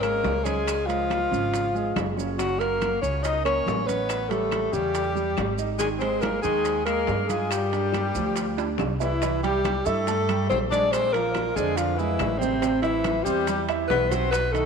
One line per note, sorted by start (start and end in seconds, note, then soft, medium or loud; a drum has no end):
0.00 0.20 G#1 medium
0.00 0.38 G#3 medium
0.00 0.45 A#3 medium
0.00 0.38 G#4 medium
0.00 0.46 A#4 medium
0.00 high conga soft
0.00 high timbale medium
0.00 claves medium
0.00 maracas soft
0.24 1.25 C#2 medium
0.24 high bongo medium
0.24 low bongo medium
0.24 high conga medium
0.24 low timbale medium
0.24 maracas soft
0.44 0.90 G#3 medium
0.44 0.80 C#4 medium
0.44 0.88 G#4 loud
0.44 0.81 C#5 medium
0.44 high conga medium
0.44 high timbale medium
0.44 maracas medium
0.68 high bongo medium
0.68 high conga soft
0.68 high timbale medium
0.68 claves medium
0.68 maracas medium
0.86 2.17 F3 medium
0.86 1.24 G#3 medium
0.86 2.16 F4 loud
0.86 1.24 G#4 medium
0.86 high bongo soft
0.86 high conga soft
0.86 high timbale medium
0.86 maracas soft
1.10 high bongo medium
1.10 high conga medium
1.10 high timbale medium
1.10 low timbale soft
1.10 claves medium
1.10 maracas soft
1.31 1.92 G#1 medium
1.31 1.66 C#3 medium
1.31 1.67 C#4 medium
1.31 high bongo soft
1.31 high conga soft
1.31 maracas medium
1.53 high bongo medium
1.53 high conga soft
1.53 high timbale medium
1.53 maracas medium
1.75 2.10 G#3 medium
1.75 2.10 G#4 medium
1.75 high conga soft
1.75 maracas soft
1.96 2.97 F#1 medium
1.96 high bongo medium
1.96 low bongo medium
1.96 high conga medium
1.96 high timbale medium
1.96 low timbale medium
1.96 claves medium
1.96 maracas soft
2.17 2.34 C#4 medium
2.17 2.35 C#5 medium
2.17 high bongo soft
2.17 high conga medium
2.17 maracas medium
2.37 2.56 C#3 medium
2.37 2.60 F#3 medium
2.37 2.56 C#4 medium
2.37 2.61 F#4 medium
2.37 high bongo medium
2.37 high conga soft
2.37 high timbale medium
2.37 maracas medium
2.59 3.02 A#3 medium
2.59 2.95 A#3 medium
2.59 3.01 A#4 loud
2.59 2.95 A#4 medium
2.59 high conga soft
2.59 high timbale medium
2.59 maracas soft
2.82 high bongo medium
2.82 high conga medium
2.82 high timbale medium
2.82 low timbale soft
2.82 claves medium
2.82 maracas soft
3.02 3.63 C#2 medium
3.02 3.38 C#3 medium
3.02 3.24 C#4 medium
3.02 3.38 C#4 medium
3.02 3.25 C#5 medium
3.02 maracas medium
3.22 3.45 D#4 medium
3.22 3.45 D#5 medium
3.22 high bongo medium
3.22 high conga soft
3.22 high timbale medium
3.22 maracas medium
3.45 3.80 A#3 medium
3.45 3.88 C#4 medium
3.45 3.80 A#4 medium
3.45 3.88 C#5 loud
3.45 high conga soft
3.45 high timbale medium
3.45 claves medium
3.45 maracas soft
3.66 4.67 A1 medium
3.66 high bongo medium
3.66 low bongo medium
3.66 high conga medium
3.66 low timbale medium
3.66 maracas soft
3.87 4.32 B3 medium
3.87 4.23 C#4 medium
3.87 4.31 B4 medium
3.87 4.23 C#5 medium
3.87 high conga medium
3.87 high timbale medium
3.87 maracas medium
4.09 high bongo medium
4.09 high conga soft
4.09 high timbale medium
4.09 claves medium
4.09 maracas medium
4.29 4.66 G3 medium
4.29 4.76 A3 medium
4.29 4.66 G4 medium
4.29 4.74 A4 medium
4.29 high bongo soft
4.29 high conga soft
4.29 high timbale medium
4.29 maracas soft
4.52 high bongo medium
4.52 high conga medium
4.52 high timbale medium
4.52 low timbale medium
4.52 claves medium
4.52 maracas soft
4.72 5.34 E2 medium
4.72 5.08 C#3 medium
4.72 5.59 G3 medium
4.72 5.08 C#4 medium
4.72 5.59 G4 loud
4.72 high bongo soft
4.72 high conga soft
4.72 maracas medium
4.95 high bongo medium
4.95 high conga soft
4.95 high timbale medium
4.95 maracas medium
5.15 5.51 G3 medium
5.15 5.51 G4 medium
5.15 high conga soft
5.15 maracas soft
5.37 6.38 G#1 medium
5.37 high bongo medium
5.37 low bongo medium
5.37 high conga medium
5.37 high timbale medium
5.37 low timbale medium
5.37 claves medium
5.37 maracas soft
5.58 5.76 D#4 medium
5.58 5.76 D#5 medium
5.58 high bongo soft
5.58 maracas medium
5.78 5.97 D#3 medium
5.78 5.88 G#3 medium
5.78 5.97 D#4 medium
5.78 5.89 G#4 medium
5.78 high bongo medium
5.78 high conga soft
5.78 high timbale medium
5.78 maracas loud
5.98 6.37 G#3 medium
5.98 6.24 C4 medium
5.98 6.37 G#4 medium
5.98 6.23 C5 medium
5.98 high conga soft
5.98 high timbale medium
5.98 maracas soft
6.21 6.43 A#3 medium
6.21 6.41 A#4 medium
6.21 high bongo medium
6.21 high conga medium
6.21 high timbale medium
6.21 low timbale medium
6.21 claves medium
6.21 maracas soft
6.42 7.04 D#2 medium
6.42 6.79 D#3 medium
6.42 6.84 G#3 medium
6.42 6.79 D#4 medium
6.42 6.83 G#4 medium
6.42 high conga soft
6.42 maracas medium
6.65 high bongo medium
6.65 high conga soft
6.65 high timbale medium
6.65 maracas medium
6.86 7.22 G#3 medium
6.86 7.31 A#3 medium
6.86 7.22 G#4 medium
6.86 7.30 A#4 medium
6.86 high conga soft
6.86 high timbale medium
6.86 claves medium
6.86 maracas soft
7.07 8.09 G2 medium
7.07 high bongo medium
7.07 low bongo medium
7.07 high conga medium
7.07 low timbale medium
7.07 maracas soft
7.28 7.52 G#3 medium
7.28 7.64 F4 medium
7.28 7.53 G#4 medium
7.28 7.65 F5 medium
7.28 high conga medium
7.28 high timbale medium
7.28 maracas medium
7.51 8.79 G3 medium
7.51 8.79 G4 medium
7.51 high bongo medium
7.51 high conga soft
7.51 high timbale medium
7.51 claves medium
7.51 maracas medium
7.71 8.07 D4 medium
7.71 8.08 D5 medium
7.71 high bongo soft
7.71 high conga soft
7.71 high timbale medium
7.71 maracas soft
7.93 high bongo medium
7.93 high conga medium
7.93 high timbale medium
7.93 low timbale medium
7.93 claves medium
7.93 maracas soft
8.14 8.75 D2 medium
8.14 8.50 F3 medium
8.14 8.51 F4 medium
8.14 high bongo soft
8.14 high conga soft
8.14 maracas medium
8.36 high bongo medium
8.36 high conga soft
8.36 high timbale medium
8.36 maracas medium
8.57 8.93 D4 medium
8.57 8.93 D5 medium
8.57 high conga soft
8.57 high timbale medium
8.57 maracas soft
8.78 9.80 C2 medium
8.78 high bongo medium
8.78 low bongo medium
8.78 high conga medium
8.78 low timbale medium
8.78 claves medium
8.78 maracas soft
9.00 9.40 E3 medium
9.00 9.18 E4 medium
9.00 9.40 E4 medium
9.00 9.18 E5 medium
9.00 high bongo soft
9.00 low timbale medium
9.00 maracas medium
9.22 9.40 E3 medium
9.22 9.40 E4 medium
9.22 9.40 E5 medium
9.22 high bongo medium
9.22 high conga soft
9.22 high timbale medium
9.22 maracas medium
9.43 9.87 G3 medium
9.43 9.79 G3 medium
9.43 9.87 G4 medium
9.43 9.79 G4 medium
9.43 9.79 G5 medium
9.43 high conga soft
9.43 high timbale medium
9.43 maracas soft
9.64 high bongo medium
9.64 high conga medium
9.64 high timbale medium
9.64 low timbale medium
9.64 claves medium
9.64 maracas soft
9.86 10.46 G2 loud
9.86 10.49 A3 medium
9.86 10.04 E4 medium
9.86 10.49 A4 loud
9.86 10.04 E5 medium
9.86 10.04 E6 medium
9.86 maracas medium
10.07 10.25 A3 medium
10.07 10.25 A4 medium
10.07 10.25 A5 medium
10.07 high bongo medium
10.07 high conga soft
10.07 high timbale medium
10.07 maracas medium
10.29 10.64 G3 medium
10.29 10.64 G4 medium
10.29 10.64 G5 medium
10.29 high conga soft
10.29 high timbale medium
10.29 claves medium
10.29 maracas soft
10.49 11.50 A#1 medium
10.49 10.59 C4 medium
10.49 10.59 C5 medium
10.49 high bongo medium
10.49 low bongo medium
10.49 high conga medium
10.49 low timbale medium
10.49 maracas soft
10.70 11.06 G#3 medium
10.70 10.94 D4 medium
10.70 11.06 G#4 medium
10.70 10.94 D5 loud
10.70 11.07 G#5 medium
10.70 high conga medium
10.70 high timbale medium
10.70 maracas medium
10.92 11.15 C4 medium
10.92 11.14 C5 loud
10.92 high bongo medium
10.92 high conga soft
10.92 high timbale medium
10.92 claves medium
10.92 maracas medium
11.13 11.49 F3 medium
11.13 11.56 A#3 medium
11.13 11.49 F4 medium
11.13 11.58 A#4 loud
11.13 11.49 F5 medium
11.13 high bongo soft
11.13 high conga soft
11.13 high timbale medium
11.13 maracas soft
11.34 high bongo medium
11.34 high conga medium
11.34 high timbale medium
11.34 low timbale medium
11.34 claves medium
11.34 maracas soft
11.54 12.16 F2 loud
11.54 11.91 D3 medium
11.54 11.78 G#3 medium
11.54 11.91 D4 medium
11.54 11.78 G#4 medium
11.54 11.92 D5 medium
11.54 high bongo soft
11.54 high conga soft
11.54 maracas medium
11.77 11.97 F3 medium
11.77 11.99 F4 medium
11.77 high bongo medium
11.77 high conga soft
11.77 high timbale medium
11.77 maracas medium
11.96 12.41 E3 medium
11.96 12.34 G#3 medium
11.96 12.40 E4 medium
11.96 maracas soft
12.00 12.34 G#4 medium
12.00 12.34 G#5 medium
12.00 high conga soft
12.19 13.20 A1 medium
12.19 high bongo medium
12.19 low bongo medium
12.19 high conga medium
12.19 high timbale medium
12.19 low timbale medium
12.19 claves medium
12.19 maracas soft
12.39 12.82 C3 medium
12.39 12.58 C3 medium
12.39 12.81 C4 loud
12.39 12.59 C4 medium
12.39 12.59 C5 medium
12.39 high bongo soft
12.39 high conga medium
12.39 maracas medium
12.62 12.80 C3 medium
12.62 12.80 C4 medium
12.62 12.80 C5 medium
12.62 high bongo medium
12.62 high conga soft
12.62 high timbale medium
12.62 maracas medium
12.82 13.26 E3 medium
12.82 13.18 E3 medium
12.82 13.25 E4 loud
12.82 13.18 E4 medium
12.82 13.19 E5 medium
12.82 high conga soft
12.82 high timbale medium
12.82 maracas soft
13.04 high bongo medium
13.04 high conga medium
13.04 high timbale medium
13.04 low timbale medium
13.04 claves medium
13.04 maracas soft
13.23 13.86 E2 medium
13.23 13.63 G3 medium
13.23 13.44 C4 medium
13.23 13.62 G4 loud
13.23 13.44 C5 medium
13.23 13.44 C6 medium
13.23 high conga soft
13.23 maracas medium
13.47 13.66 G3 medium
13.47 13.66 G4 medium
13.47 13.66 G5 medium
13.47 high bongo medium
13.47 high conga soft
13.47 high timbale medium
13.47 maracas medium
13.69 14.04 E3 medium
13.69 14.04 E4 medium
13.69 14.04 E5 medium
13.69 high conga soft
13.69 high timbale medium
13.69 claves medium
13.69 maracas soft
13.88 14.65 B1 medium
13.88 14.14 B3 medium
13.88 14.11 B4 loud
13.88 high bongo medium
13.88 low bongo medium
13.88 high conga medium
13.88 low timbale medium
13.88 maracas soft
14.09 14.46 F#3 medium
14.09 14.32 C4 medium
14.09 14.47 F#4 medium
14.09 14.31 C5 medium
14.09 14.47 F#5 medium
14.09 high conga medium
14.09 high timbale medium
14.09 maracas medium
14.31 14.55 B3 medium
14.31 14.54 B4 loud
14.31 high bongo medium
14.31 high conga soft
14.31 high timbale medium
14.31 claves medium
14.31 maracas medium
14.52 14.65 D#3 medium
14.52 14.65 A3 medium
14.52 14.65 D#4 medium
14.52 14.65 A4 medium
14.52 14.65 D#5 medium
14.52 high bongo soft
14.52 high conga soft
14.52 high timbale medium
14.52 maracas soft